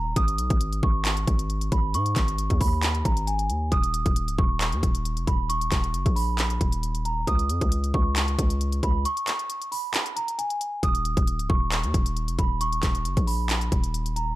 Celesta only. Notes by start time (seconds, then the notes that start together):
Already playing: A#5
0.16 D#6
0.83 C#6
1.72 B5
1.95 C#6
2.61 B5
3.05 A#5
3.27 G#5
3.72 D#6
4.39 C#6
5.27 B5
5.49 C#6
6.16 B5
7.05 A#5
7.27 D#6
7.94 C#6
8.84 B5
9.05 C#6
9.72 B5
10.16 A#5
10.38 G#5
10.83 D#6
11.49 C#6
12.39 B5
12.61 C#6
13.27 B5
14.16 A#5